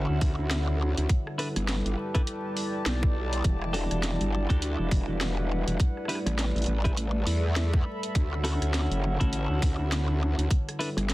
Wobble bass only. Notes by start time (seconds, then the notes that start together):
0.09 D2
0.21 D2
0.39 D2
0.98 D2
1.56 G1
1.85 G1
2.86 B1
3.45 E1
3.91 E1
4.20 G1
4.50 D2
4.79 E1
4.91 E1
5.08 E1
5.67 E1
6.26 A1
6.55 A1
6.68 A1
7.27 E2
8.15 D2
8.62 D2
8.91 F#1
9.21 A1
9.50 D2
9.62 D2
9.79 D2
10.38 D2
10.97 G1